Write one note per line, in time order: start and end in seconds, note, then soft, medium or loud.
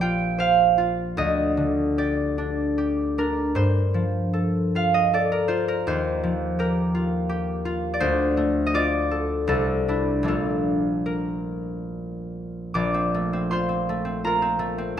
0.00 1.21 A#1 medium
0.00 1.20 F3 medium
0.00 0.77 F4 medium
0.00 1.97 G4 medium
0.00 1.21 A#4 medium
0.00 1.97 D5 medium
0.00 3.91 G5 medium
0.38 3.54 C5 medium
0.38 1.21 F5 medium
0.78 1.21 F4 medium
1.17 3.57 D2 medium
1.17 2.54 D#5 medium
1.57 3.56 D3 soft
1.98 2.77 G4 soft
1.98 5.13 D5 medium
2.38 3.17 D4 soft
2.78 6.58 G4 soft
3.18 7.08 D4 soft
3.18 5.31 A#4 medium
3.55 5.89 G2 medium
3.55 5.47 C5 medium
3.94 6.22 F3 soft
4.33 5.12 A4 soft
4.75 5.47 F4 soft
4.75 8.66 F5 medium
4.94 5.26 D#5 medium
5.13 5.89 A4 soft
5.13 7.92 D5 medium
5.32 5.62 A#4 medium
5.48 6.93 F4 soft
5.48 5.79 C5 medium
5.68 5.99 A#4 medium
5.87 8.06 D#2 medium
5.87 7.10 C5 medium
6.24 9.52 F3 soft
6.59 7.28 G4 soft
6.59 8.06 A#4 medium
6.95 7.64 F4 medium
7.29 8.05 G4 medium
7.65 8.73 F4 medium
7.94 8.06 D5 medium
8.00 9.50 D2 medium
8.00 10.29 C5 medium
8.37 9.50 A3 medium
8.66 8.78 D#5 medium
8.74 9.51 F4 medium
8.74 12.65 D5 medium
9.11 9.48 A4 medium
9.47 10.30 C2 medium
9.47 10.27 A4 medium
9.88 10.24 D4 soft
9.88 10.31 E4 medium
10.23 12.74 A#1 medium
10.23 13.13 A3 soft
10.23 14.15 D4 soft
10.28 13.50 F4 soft
10.28 14.18 A4 medium
11.06 14.26 A#4 medium
12.74 14.96 A#1 medium
12.74 15.00 D5 medium
12.74 15.00 D6 medium
12.94 13.32 C4 soft
13.14 13.88 A3 soft
13.33 13.68 C4 soft
13.51 14.23 F4 medium
13.51 15.00 C5 medium
13.51 15.00 C6 medium
13.69 14.04 C4 soft
13.89 14.58 A3 medium
14.05 14.41 C4 medium
14.24 15.00 F4 medium
14.24 15.00 A#4 medium
14.24 15.00 A#5 medium
14.42 14.77 C4 medium
14.59 15.00 A3 medium
14.78 15.00 C4 soft